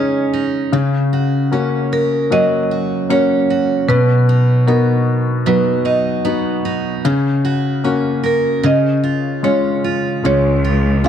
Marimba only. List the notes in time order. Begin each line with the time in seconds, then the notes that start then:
Already playing: C#5
1.93 A#4
2.32 D#5
3.10 C#5
3.89 B4
4.68 A#4
5.47 B4
5.86 D#5
8.26 A#4
8.66 D#5
9.44 C#5
10.26 C#5